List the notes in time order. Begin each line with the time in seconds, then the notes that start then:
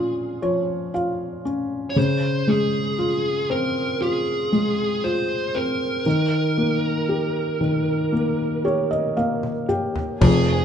Already playing: A#2 F3 C#4 F4
0.42 F3 C#5
0.94 F4 F5
1.45 C#4
1.90 C#5
1.96 C#3 C5
2.47 G#3 G#4
2.98 F4
3.50 C4 A#4
4.01 F4 G#4
4.52 G#3
5.04 F4 C5
5.55 C4 A#4
6.06 D#3
6.58 A#3
7.09 G4
7.61 D#3
8.12 A#3
8.65 G4 C#5
8.91 D#5
9.17 A#3 F5, high tom
9.43 mid tom
9.69 G4 G5, mid tom
9.96 floor tom
10.21 F1 F2 F3 G#4, kick, floor tom, crash